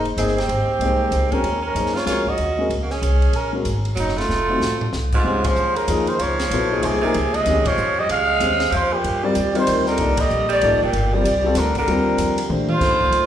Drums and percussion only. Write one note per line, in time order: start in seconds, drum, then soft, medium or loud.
0.05 ride soft
0.18 hi-hat pedal medium
0.18 ride medium
0.28 snare soft
0.38 snare soft
0.38 ride soft
0.49 ride soft
0.81 ride soft
1.12 hi-hat pedal soft
1.12 ride medium
1.32 kick soft
1.32 ride soft
1.44 ride soft
1.76 hi-hat pedal soft
1.76 ride soft
1.86 snare soft
1.96 snare soft
2.07 snare soft
2.07 hi-hat pedal medium
2.07 ride medium
2.27 kick soft
2.38 ride soft
2.70 ride soft
2.90 snare soft
3.03 hi-hat pedal soft
3.03 ride medium
3.22 ride soft
3.33 ride soft
3.65 hi-hat pedal soft
3.65 ride soft
3.85 ride soft
3.97 hi-hat pedal soft
3.97 ride medium
4.09 snare soft
4.18 snare soft
4.18 ride soft
4.30 snare soft
4.61 snare medium
4.61 hi-hat pedal soft
4.81 floor tom medium
4.93 snare soft
5.12 kick medium
5.12 crash medium
5.44 kick medium
5.44 ride medium
5.56 hi-hat pedal medium
5.76 ride soft
5.88 hi-hat pedal medium
5.88 ride medium
6.07 ride soft
6.19 ride medium
6.39 snare soft
6.39 ride soft
6.51 hi-hat pedal soft
6.51 ride medium
6.83 ride medium
7.14 ride medium
7.34 ride soft
7.46 hi-hat pedal soft
7.46 ride medium
7.65 kick medium
7.65 ride medium
7.77 hi-hat pedal medium
8.09 ride medium
8.40 hi-hat pedal soft
8.40 ride medium
8.60 snare soft
8.60 ride soft
8.72 ride medium
9.04 ride medium
9.35 hi-hat pedal soft
9.35 ride medium
9.55 ride soft
9.67 hi-hat pedal medium
9.67 ride medium
9.86 snare soft
9.98 ride medium
10.17 kick medium
10.17 ride medium
10.30 hi-hat pedal soft
10.50 ride soft
10.61 ride medium
10.93 ride medium
11.25 hi-hat pedal medium
11.25 ride medium
11.55 snare soft
11.55 hi-hat pedal medium
11.55 ride medium
11.75 kick medium
11.75 ride soft
11.88 ride medium
12.18 hi-hat pedal medium
12.18 ride medium
12.38 ride medium
12.50 mid tom soft
12.69 mid tom medium
12.81 kick medium
12.81 snare soft
12.81 crash medium
13.01 kick soft
13.12 hi-hat pedal soft
13.12 ride medium